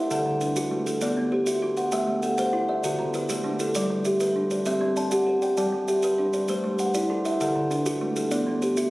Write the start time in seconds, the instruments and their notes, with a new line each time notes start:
Already playing: kalimba E4 A4 B4 D5 E5
0.11 kalimba D3 A4 F#5, maracas
0.26 kalimba D3
0.41 kalimba D4 B4, maracas
0.56 kalimba F#4 B4, maracas
0.71 kalimba A3
0.86 kalimba G4 A4, maracas
1.01 kalimba B3 D4 D5, maracas
1.17 kalimba B3
1.32 kalimba G4 C5
1.46 kalimba F#4 E5, maracas
1.62 kalimba F#4 B4
1.77 kalimba C5 F#5, maracas
1.92 kalimba A3 E5 G5, maracas
2.07 kalimba A3
2.22 kalimba A4 F#5, maracas
2.38 kalimba C5 F#5, maracas
2.53 kalimba E4
2.68 kalimba D5 E5
2.84 kalimba D3 F#4 A4, maracas
2.99 kalimba D3
3.14 kalimba E4 B4, maracas
3.29 kalimba A3 G4, maracas
3.44 kalimba A3 D4
3.59 kalimba E4 A4, maracas
3.75 kalimba G3 B4 D5, maracas
3.90 kalimba G3
4.05 kalimba G4 E5, maracas
4.20 kalimba B4 E5, maracas
4.36 kalimba D4
4.51 kalimba C5 D5, maracas
4.65 kalimba C4 G4 E5, maracas
4.81 kalimba C4
4.96 kalimba D5 A5, maracas
5.11 kalimba G4 F#5, maracas
5.27 kalimba G4 C5
5.42 kalimba D5 G5, maracas
5.57 kalimba G3 D5 A5, maracas
5.72 kalimba G3
5.88 kalimba G4 E5, maracas
6.02 kalimba B4 E5, maracas
6.18 kalimba D4
6.33 kalimba C5 D5, maracas
6.48 kalimba A3 G4 C5, maracas
6.64 kalimba A3
6.79 kalimba B4 F#5, maracas
6.94 kalimba E4 D5, maracas
7.10 kalimba E4 A4
7.25 kalimba B4 E5, maracas
7.41 kalimba D3 A4 F#5, maracas
7.55 kalimba D3
7.71 kalimba D4 B4, maracas
7.86 kalimba F#4 B4, maracas
8.01 kalimba A3
8.16 kalimba G4 A4, maracas
8.31 kalimba B3 D4 D5, maracas
8.46 kalimba B3
8.62 kalimba G4 C5, maracas
8.77 kalimba F#4 E5, maracas